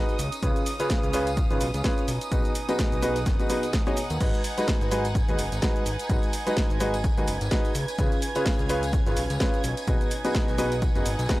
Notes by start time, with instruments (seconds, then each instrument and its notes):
Already playing: upright piano D#4 F#4 G#4 B4, string section D#4 F#5, violin section D#6
0.09 closed hi-hat, tambourine, shaker
0.19 analog synth bass C#2, string section C#4, open hi-hat, shaker
0.32 closed hi-hat, tambourine, shaker
0.43 analog synth bass C#2, upright piano C#3 C#4 F4 G#4 B4, kick, closed hi-hat, tambourine, shaker
0.56 string section B4, closed hi-hat, tambourine, shaker
0.66 open hi-hat, shaker
0.75 string section F5
0.80 upright piano C#3 C#4 F4 G#4 B4, closed hi-hat, tambourine, shaker
0.90 kick, snare, closed hi-hat, tambourine, shaker
1.03 analog synth bass C#2, string section G#5, closed hi-hat, tambourine, shaker
1.13 upright piano C#3 C#4 F4 G#4 B4, open hi-hat, shaker
1.27 closed hi-hat, tambourine, shaker
1.37 kick, closed hi-hat, tambourine, shaker
1.51 analog synth bass G#1, upright piano C#3 C#4 F4 G#4 B4, closed hi-hat, tambourine, shaker
1.61 analog synth bass B1, open hi-hat, shaker
1.74 analog synth bass C#2, closed hi-hat, tambourine, shaker
1.84 upright piano C#4 F4 G#4 B4, kick, snare, closed hi-hat, tambourine, shaker
1.98 closed hi-hat, tambourine, shaker
2.08 analog synth bass B1, string section D#4, open hi-hat, shaker
2.21 closed hi-hat, tambourine, shaker
2.31 analog synth bass B1, upright piano B2 D#4 F#4 G#4 B4, kick, closed hi-hat, tambourine, shaker
2.45 closed hi-hat, tambourine, shaker
2.55 open hi-hat, shaker
2.69 upright piano B2 D#4 F#4 G#4 B4, closed hi-hat, tambourine, shaker
2.79 kick, snare, closed hi-hat, shaker
2.92 analog synth bass B1, closed hi-hat, tambourine, shaker
3.02 upright piano B2 D#4 F#4 G#4 B4, string section F#5, open hi-hat, shaker
3.16 closed hi-hat, tambourine, shaker
3.26 analog synth bass F#1, kick, snare, closed hi-hat, tambourine, shaker
3.40 upright piano B2 D#4 F#4 G#4 B4, closed hi-hat, tambourine, shaker
3.50 upright piano B2 D#4 F#4 G#4 B4, open hi-hat, shaker
3.63 closed hi-hat, tambourine, shaker
3.73 kick, snare, closed hi-hat, tambourine, shaker
3.86 upright piano B2 D#4 F#4 G#4 C#5, closed hi-hat, tambourine, shaker
3.97 open hi-hat, shaker
4.10 analog synth bass D#2, closed hi-hat, tambourine, shaker
4.20 analog synth bass G#1, upright piano G#3 D#4 F#4 G#4 B4, violin section G#6, kick, closed hi-hat, tambourine, crash, shaker
4.34 closed hi-hat, tambourine, shaker
4.44 open hi-hat, shaker
4.58 upright piano G#3 D#4 F#4 G#4 B4, closed hi-hat, tambourine, shaker
4.68 kick, snare, closed hi-hat, tambourine, shaker
4.81 analog synth bass G#1, closed hi-hat, tambourine, shaker
4.91 upright piano G#3 D#4 F#4 G#4 B4, open hi-hat, shaker
5.05 closed hi-hat, tambourine, shaker
5.15 kick, closed hi-hat, tambourine, shaker
5.29 analog synth bass D#2, upright piano G#3 D#4 F#4 G#4 B4, closed hi-hat, tambourine, shaker
5.39 analog synth bass F#1, open hi-hat, shaker
5.52 analog synth bass G#1, closed hi-hat, tambourine, shaker
5.62 upright piano G#3 D#4 F#4 G#4 B4, kick, snare, closed hi-hat, tambourine, shaker
5.76 closed hi-hat, tambourine, shaker
5.86 analog synth bass G#1, open hi-hat, shaker
5.99 closed hi-hat, tambourine, shaker
6.09 analog synth bass G#1, upright piano G#3 D#4 F#4 G#4 B4, kick, closed hi-hat, tambourine, shaker
6.23 closed hi-hat, tambourine, shaker
6.33 open hi-hat, shaker
6.47 upright piano G#3 D#4 F#4 G#4 B4, closed hi-hat, tambourine, shaker
6.57 kick, snare, closed hi-hat, tambourine, shaker
6.70 analog synth bass G#1, closed hi-hat, tambourine, shaker
6.80 upright piano G#3 D#4 F#4 G#4 B4, open hi-hat, shaker
6.94 closed hi-hat, tambourine, shaker
7.04 kick, closed hi-hat, tambourine, shaker
7.17 analog synth bass D#2, upright piano G#3 D#4 F#4 G#4 B4, closed hi-hat, tambourine, shaker
7.28 analog synth bass F#1, open hi-hat, shaker
7.41 analog synth bass G#1, closed hi-hat, tambourine, shaker
7.51 upright piano D#4 F#4 G#4 B4, kick, snare, closed hi-hat, tambourine, shaker
7.65 closed hi-hat, tambourine, shaker
7.75 analog synth bass C#2, string section C#4, open hi-hat, shaker
7.88 closed hi-hat, tambourine, shaker
7.98 analog synth bass C#2, upright piano C#3 C#4 F4 G#4 B4, kick, closed hi-hat, tambourine, shaker
8.12 closed hi-hat, tambourine, shaker
8.22 open hi-hat, shaker
8.35 upright piano C#3 C#4 F4 G#4 B4, string section F5, closed hi-hat, tambourine, shaker
8.46 kick, snare, closed hi-hat, tambourine, shaker
8.59 analog synth bass C#2, closed hi-hat, tambourine, shaker
8.69 upright piano C#3 C#4 F4 G#4 B4, open hi-hat, shaker
8.83 closed hi-hat, tambourine, shaker
8.93 kick, closed hi-hat, tambourine, shaker
9.06 analog synth bass G#1, upright piano C#3 C#4 F4 G#4 B4, closed hi-hat, tambourine, shaker
9.17 analog synth bass B1, open hi-hat, shaker
9.30 analog synth bass C#2, closed hi-hat, tambourine, shaker
9.40 upright piano C#4 F4 G#4 B4, kick, snare, closed hi-hat, tambourine, shaker
9.54 closed hi-hat, tambourine, shaker
9.64 analog synth bass B1, string section D#4, open hi-hat, shaker
9.77 closed hi-hat, tambourine, shaker
9.87 analog synth bass B1, upright piano B2 D#4 F#4 G#4 B4, kick, closed hi-hat, tambourine, shaker
10.01 closed hi-hat, tambourine, shaker
10.11 open hi-hat, shaker
10.25 upright piano B2 D#4 F#4 G#4 B4, closed hi-hat, tambourine, shaker
10.35 kick, snare, closed hi-hat, tambourine, shaker
10.48 analog synth bass B1, closed hi-hat, tambourine, shaker
10.58 upright piano B2 D#4 F#4 G#4 B4, string section F#5, open hi-hat, shaker
10.72 closed hi-hat, tambourine, shaker
10.82 kick, closed hi-hat, tambourine, shaker
10.95 analog synth bass F#1, upright piano B2 D#4 F#4 G#4 B4, closed hi-hat, tambourine, shaker
11.06 analog synth bass G#1, open hi-hat, shaker
11.19 analog synth bass B1, closed hi-hat, tambourine, shaker
11.29 upright piano B2 D#4 F#4 G#4 B4, kick, snare, closed hi-hat, tambourine, shaker